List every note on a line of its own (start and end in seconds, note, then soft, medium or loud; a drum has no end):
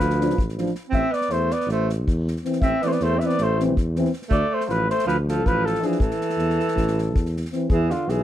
0.00 0.38 D2 loud
0.00 0.46 F3 medium
0.00 0.44 B4 medium
0.10 snare soft
0.20 0.35 F3 medium
0.20 0.35 D4 medium
0.20 snare soft
0.30 snare soft
0.37 0.67 A1 medium
0.37 kick medium
0.49 snare soft
0.58 0.72 F3 medium
0.58 0.72 D4 soft
0.58 snare soft
0.66 snare soft
0.75 snare soft
0.90 1.03 A1 medium
0.90 1.13 C4 medium
0.90 kick medium
0.94 1.15 E5 medium
1.12 1.33 B3 medium
1.12 1.33 D5 medium
1.12 snare soft
1.21 snare soft
1.30 1.51 E2 medium
1.30 1.54 A3 medium
1.30 1.54 C5 medium
1.30 snare soft
1.51 1.70 B3 medium
1.51 1.70 D5 medium
1.51 snare soft
1.61 snare soft
1.67 2.08 A1 medium
1.67 snare soft
1.71 1.90 A3 medium
1.71 1.91 C5 medium
1.90 snare soft
2.07 2.37 E2 medium
2.07 kick medium
2.28 snare soft
2.36 snare soft
2.44 2.60 E3 soft
2.44 2.60 C4 medium
2.44 snare soft
2.53 snare soft
2.61 2.73 A1 medium
2.61 2.84 C4 medium
2.61 2.85 E5 medium
2.61 kick medium
2.82 2.97 E3 medium
2.82 2.87 B3 medium
2.82 2.98 C4 soft
2.82 2.90 D5 medium
2.82 snare soft
2.86 2.91 A3 medium
2.86 3.02 B3 medium
2.86 2.94 C5 medium
2.92 3.04 D5 medium
2.92 snare soft
3.00 3.22 E2 medium
3.00 3.16 A3 medium
3.00 3.20 C5 medium
3.00 snare soft
3.15 3.22 C4 soft
3.19 3.37 E3 medium
3.19 3.40 B3 medium
3.19 3.37 C4 medium
3.19 3.27 E5 medium
3.19 snare soft
3.26 3.45 D5 medium
3.26 snare soft
3.38 3.78 A1 loud
3.38 3.60 A3 medium
3.38 snare soft
3.43 3.62 C5 medium
3.60 3.74 E3 medium
3.60 3.75 C4 medium
3.60 snare soft
3.77 4.07 E2 medium
3.77 kick medium
3.96 4.10 E3 medium
3.96 4.11 C4 medium
3.96 snare soft
4.05 snare soft
4.13 snare soft
4.22 snare soft
4.29 4.42 D2 loud
4.29 4.49 A3 medium
4.29 4.55 D5 loud
4.29 kick medium
4.49 4.64 A3 medium
4.54 4.67 C5 medium
4.61 4.69 A3 medium
4.61 snare soft
4.67 4.90 A1 medium
4.67 4.87 F3 medium
4.67 4.90 B4 medium
4.67 4.71 C5 medium
4.67 snare soft
4.88 5.06 A3 medium
4.88 5.07 C5 loud
4.88 snare soft
4.99 snare soft
5.06 5.47 D2 medium
5.06 5.16 F3 loud
5.06 5.17 B4 medium
5.06 snare soft
5.27 5.44 F3 medium
5.27 5.48 A4 medium
5.27 snare soft
5.44 5.75 A1 medium
5.44 5.65 F3 medium
5.44 5.67 B4 medium
5.44 kick medium
5.65 5.83 F3 medium
5.65 5.87 A4 medium
5.65 snare soft
5.75 snare soft
5.81 5.99 E3 medium
5.81 5.97 F3 medium
5.81 5.98 D4 medium
5.81 6.04 G#4 medium
5.81 snare soft
5.92 snare soft
5.98 6.10 A1 medium
5.98 7.35 E3 medium
5.98 7.36 A4 medium
5.98 kick medium
6.11 snare soft
6.21 snare soft
6.30 snare soft
6.37 6.59 E2 medium
6.37 snare soft
6.50 snare soft
6.60 snare soft
6.68 snare soft
6.76 7.18 A1 medium
6.76 kick medium
6.76 snare soft
6.88 snare soft
6.98 snare soft
7.16 7.46 E2 medium
7.16 kick medium
7.26 snare soft
7.37 snare soft
7.45 snare soft
7.52 7.68 E3 soft
7.52 7.67 C4 soft
7.52 snare soft
7.70 7.91 E2 loud
7.70 7.92 E3 medium
7.70 7.93 G#4 medium
7.70 kick loud
7.90 8.08 D3 medium
7.90 8.11 F4 medium
7.90 snare soft
8.06 8.23 B1 loud
8.06 8.23 E3 medium
8.06 8.23 G#4 medium
8.06 snare soft